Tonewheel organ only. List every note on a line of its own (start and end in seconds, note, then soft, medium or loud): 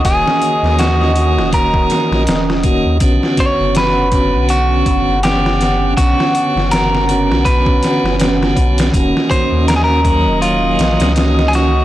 0.04 1.12 D#3 medium
0.04 1.12 A#3 medium
0.04 1.13 C#4 medium
0.04 1.14 F#4 medium
1.15 2.23 D#3 medium
1.15 2.23 A#3 medium
1.15 2.24 C#4 medium
1.15 2.24 F#4 medium
2.64 2.97 D#3 medium
2.64 2.97 A#3 medium
2.64 2.98 C#4 medium
2.64 2.98 F#4 loud
3.00 4.08 D3 medium
3.00 4.08 B3 medium
3.00 4.09 C#4 medium
3.00 4.10 F#4 medium
4.11 5.19 D3 medium
4.11 5.19 B3 medium
4.11 5.20 C#4 medium
4.11 5.21 F#4 medium
5.23 5.93 D3 medium
5.23 5.94 B3 medium
5.23 5.94 C#4 medium
5.23 5.94 F#5 medium
5.96 7.04 D3 medium
5.96 7.05 B3 medium
5.96 7.05 C#4 medium
5.96 7.06 F#4 medium
7.07 8.15 D3 medium
7.07 8.16 B3 medium
7.07 8.16 C#4 medium
7.07 8.17 F#4 loud
8.19 8.90 D3 medium
8.19 8.90 B3 medium
8.19 8.90 C#4 medium
8.19 8.91 F#4 medium
8.92 10.00 D#3 medium
8.92 10.01 A#3 medium
8.92 10.01 C#4 medium
8.92 10.02 F#4 medium
10.03 11.11 D#3 medium
10.03 11.13 F#3 loud
10.03 11.12 A#3 medium
10.03 11.12 C#4 medium
11.15 11.85 D#3 medium
11.15 11.85 A#3 medium
11.15 11.85 C#4 medium
11.15 11.85 F#4 medium